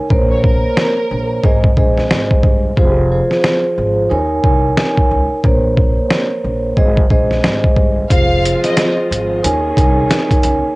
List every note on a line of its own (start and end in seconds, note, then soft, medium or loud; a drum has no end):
0.10 0.63 A#1 loud
0.10 1.44 A#3 medium
0.10 1.44 A#4 medium
0.10 1.43 C5 medium
0.10 1.44 C#5 medium
0.10 kick loud
0.30 0.42 C#5 medium
0.43 1.59 A#4 medium
0.43 kick medium
0.77 snare loud
1.11 1.37 A#1 medium
1.44 1.70 G#1 loud
1.44 1.67 G#3 medium
1.44 1.67 G#4 medium
1.44 1.67 C5 medium
1.44 1.67 D#5 loud
1.44 kick loud
1.64 kick medium
1.77 2.04 A#1 medium
1.77 2.71 G#3 medium
1.77 2.71 G#4 medium
1.77 2.71 C5 medium
1.77 2.71 D#5 loud
1.77 kick medium
1.98 snare soft
2.11 2.37 G#1 medium
2.11 snare loud
2.31 kick loud
2.43 2.70 G1 medium
2.43 kick medium
2.77 3.20 F1 loud
2.77 3.08 F3 loud
2.77 3.08 F4 medium
2.77 3.08 G#4 medium
2.77 3.08 C5 loud
2.77 kick loud
3.11 4.11 F3 medium
3.11 4.11 F4 medium
3.11 4.11 G#4 medium
3.11 4.11 C5 loud
3.31 snare soft
3.44 snare loud
3.78 4.04 G#1 medium
4.09 4.37 D#2 loud
4.09 4.41 D#4 medium
4.09 4.41 A#4 medium
4.09 4.41 C#5 medium
4.09 4.42 G#5 loud
4.43 4.70 C2 medium
4.43 5.37 D#4 medium
4.43 5.37 A#4 medium
4.43 5.37 C#5 medium
4.43 5.38 G#5 loud
4.43 kick medium
4.77 snare loud
4.97 kick medium
5.11 5.27 C#2 medium
5.44 5.97 A#1 loud
5.44 6.77 A#3 medium
5.44 6.77 A#4 medium
5.44 6.77 C5 medium
5.44 6.78 C#5 medium
5.44 kick loud
5.77 kick medium
6.11 snare loud
6.44 6.71 A#1 medium
6.77 7.04 G#1 loud
6.77 7.00 G#3 medium
6.77 7.00 G#4 medium
6.77 7.00 C5 medium
6.77 7.00 D#5 loud
6.77 kick loud
6.97 kick medium
7.10 7.37 A#1 medium
7.10 8.04 G#3 medium
7.10 8.05 G#4 medium
7.10 8.05 C5 medium
7.10 8.05 D#5 loud
7.10 kick medium
7.31 snare soft
7.44 7.71 G#1 medium
7.44 snare loud
7.64 kick loud
7.76 8.03 G1 medium
7.76 kick medium
8.10 8.53 F1 loud
8.10 8.42 F3 loud
8.10 9.42 G#3 medium
8.10 9.42 C4 medium
8.10 9.42 F4 medium
8.10 8.42 F4 medium
8.10 8.42 G#4 medium
8.10 8.42 C5 loud
8.10 8.61 F5 loud
8.10 kick loud
8.10 closed hi-hat medium
8.45 9.44 F3 loud
8.45 9.44 F4 medium
8.45 9.45 G#4 medium
8.45 9.45 C5 loud
8.45 closed hi-hat medium
8.64 8.94 D#5 medium
8.64 snare soft
8.64 closed hi-hat medium
8.77 snare loud
8.77 closed hi-hat medium
9.11 9.37 G#1 medium
9.11 closed hi-hat medium
9.43 9.71 D#2 loud
9.43 10.75 D#3 medium
9.43 10.76 A#3 medium
9.43 10.75 C#4 medium
9.43 9.75 D#4 medium
9.43 10.75 G#4 medium
9.43 9.75 A#4 medium
9.43 9.75 C#5 medium
9.43 9.75 G#5 medium
9.43 closed hi-hat loud
9.76 10.04 C2 medium
9.76 10.70 D#4 loud
9.76 10.71 A#4 medium
9.76 10.71 C#5 medium
9.76 10.71 G#5 loud
9.76 kick medium
9.76 closed hi-hat medium
10.11 snare loud
10.11 closed hi-hat medium
10.31 kick loud
10.31 closed hi-hat medium
10.43 10.60 C#2 medium
10.43 closed hi-hat medium